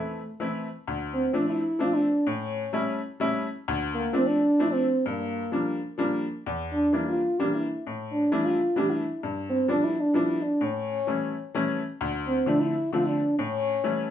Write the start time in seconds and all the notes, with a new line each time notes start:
Already playing: E3 A3 C4 E4
0.40 E3 A3 C4 E4
0.87 D2
1.14 C4
1.33 F3 A3 C4 D4
1.49 E4
1.79 F3 A3 C4 D4 F4
1.95 D4
2.27 A2 C#4
2.73 G3 A3 C#4 E4
3.20 G3 A3 C#4 E4
3.68 D2
3.94 A#3
4.13 F3 A3 C4 D4
4.27 D4
4.59 F3 A3 C4 D4 E4
4.73 C4
5.06 G2 A#3
5.52 F3 G3 A#3 D4
5.98 F3 G3 A#3 D4
6.46 E2
6.72 D4
6.93 E3 G3 A#3 D4 E4
7.08 F4
7.39 E3 G3 A#3 D4 G4
7.55 E4
7.87 A2
8.12 D4
8.32 E3 G3 A3 D4 E4
8.45 F4
8.76 E3 G3 A3 D4 G4
8.90 E4
9.23 G2
9.50 C4
9.68 F3 G3 B3 D4
9.84 E4
10.00 D4
10.14 F3 G3 B3 D4 E4
10.42 D4
10.61 A2 C#4
11.07 E3 G3 A3 C#4
11.54 E3 G3 A3 C#4
12.01 D2
12.27 C4
12.46 D3 F3 A3 C4 D4
12.60 E4
12.93 D3 F3 A3 C4 F4
13.07 D4
13.39 A2 C#4
13.84 E3 G3 A3 C#4